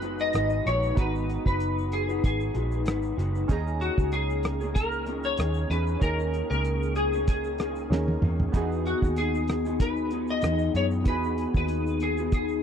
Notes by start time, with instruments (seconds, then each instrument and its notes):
Already playing: picked electric bass F#1, synth keys B3 D#4 F#4 A#5, electric slide guitar B4
0.02 clean electric guitar G#3 D#4 F#4 B4, closed hi-hat, shaker
0.19 electric slide guitar D#5, shaker
0.33 picked electric bass G#1, clean electric guitar G#3 D#4 F#4 B4, cross-stick, closed hi-hat, shaker
0.50 shaker
0.65 picked electric bass A#1, clean electric guitar G#3 D#4 F#4 B4, electric slide guitar C#5, closed hi-hat, shaker
0.83 shaker
0.95 picked electric bass G#1, clean electric guitar G#3 D#4 F#4 B4, synth keys B3 D#4 F#4, electric slide guitar B4, kick, closed hi-hat, shaker
1.00 synth keys A#5
1.15 shaker
1.30 closed hi-hat, shaker
1.45 picked electric bass F#1, clean electric guitar D#4 F#4 B4, electric slide guitar B4, kick, shaker
1.60 closed hi-hat, shaker
1.78 shaker
1.92 electric slide guitar G#4, closed hi-hat, shaker
2.09 clean electric guitar D#4 F#4 B4, shaker
2.24 picked electric bass G#1, electric slide guitar G#4, kick, closed hi-hat, shaker
2.40 shaker
2.54 picked electric bass A#1, clean electric guitar G#3 D#4 F#4 B4, closed hi-hat, shaker
2.72 shaker
2.85 picked electric bass G#1, clean electric guitar G#3 D#4 F#4 B4, cross-stick, closed hi-hat, shaker
3.03 shaker
3.17 picked electric bass F#1, clean electric guitar G#3 D#4 F#4 B4, closed hi-hat, shaker
3.35 shaker
3.48 picked electric bass D#2, clean electric guitar D#3 A#3 C#4 G#4, synth keys C#4 D#4 G#4, kick, closed hi-hat, shaker
3.52 synth keys A#5
3.67 shaker
3.81 electric slide guitar F#4, closed hi-hat, shaker
3.98 picked electric bass C#2, clean electric guitar A#3 C#4 G#4, kick, shaker
4.12 electric slide guitar G#4, closed hi-hat, shaker
4.30 shaker
4.43 cross-stick, closed hi-hat, shaker
4.61 clean electric guitar A#3 C#4 G#4, shaker
4.75 electric slide guitar A#4, kick, closed hi-hat, shaker
4.92 shaker
5.06 clean electric guitar D#3 A#3 C#4 G#4, closed hi-hat, shaker
5.24 electric slide guitar C#5, shaker
5.38 picked electric bass D#2, clean electric guitar D#3 A#3 C#4 G#4, cross-stick, closed hi-hat, shaker
5.54 shaker
5.69 picked electric bass E2, clean electric guitar D#3 C#4 G#4, electric slide guitar B4, closed hi-hat, shaker
5.87 shaker
5.99 picked electric bass D#2, clean electric guitar D#3 A#3 C#4 G#4, synth keys C#4 D#4 G#4, electric slide guitar A#4, kick, closed hi-hat, shaker
6.05 synth keys A#4
6.20 shaker
6.34 closed hi-hat, shaker
6.50 picked electric bass C#2, clean electric guitar A#3 C#4 G#4, electric slide guitar A#4, shaker
6.65 closed hi-hat, shaker
6.83 shaker
6.96 electric slide guitar G#4, closed hi-hat, shaker
7.13 clean electric guitar A#3 C#4 G#4, shaker
7.28 electric slide guitar G#4, kick, closed hi-hat, shaker
7.44 shaker
7.58 clean electric guitar D#3 A#3 C#4 G#4, cross-stick, closed hi-hat, shaker
7.76 shaker
7.90 picked electric bass D#2, clean electric guitar D#3 A#3 C#4 G#4, synth keys C#4 D#4 G#4 A#4, snare
8.08 high tom
8.22 picked electric bass E2, clean electric guitar D#3 A#3 C#4 G#4, mid tom
8.40 floor tom
8.52 picked electric bass E2, clean electric guitar E3 B3 D#4 G#4, synth keys B3 D#4 F#4, kick, closed hi-hat, shaker
8.57 synth keys G#4
8.72 shaker
8.86 electric slide guitar F#4, closed hi-hat, shaker
9.02 picked electric bass D#2, clean electric guitar B3 D#4 G#4, kick, shaker
9.16 electric slide guitar G#4, closed hi-hat, shaker
9.35 shaker
9.48 cross-stick, closed hi-hat, shaker
9.65 clean electric guitar B3 D#4 G#4, shaker
9.80 electric slide guitar B4, kick, closed hi-hat, shaker
9.96 shaker
10.11 clean electric guitar B3 D#4 G#4, closed hi-hat, shaker
10.28 electric slide guitar D#5, shaker
10.42 picked electric bass E2, clean electric guitar E3 B3 D#4 G#4, cross-stick, closed hi-hat, shaker
10.59 shaker
10.74 picked electric bass F#2, clean electric guitar E3 B3 D#4 G#4, electric slide guitar C#5, closed hi-hat, shaker
10.91 shaker
11.04 picked electric bass E2, clean electric guitar E3 B3 D#4 G#4, synth keys B3 D#4 F#4, electric slide guitar B4, kick, closed hi-hat, shaker
11.09 synth keys G#4
11.24 shaker
11.38 closed hi-hat, shaker
11.54 picked electric bass D#2, clean electric guitar B3 D#4 G#4, electric slide guitar B4, kick, shaker
11.68 closed hi-hat, shaker
11.87 shaker
12.00 electric slide guitar G#4, closed hi-hat, shaker
12.17 clean electric guitar B3 D#4 G#4, shaker
12.32 electric slide guitar G#4, kick, closed hi-hat, shaker
12.49 shaker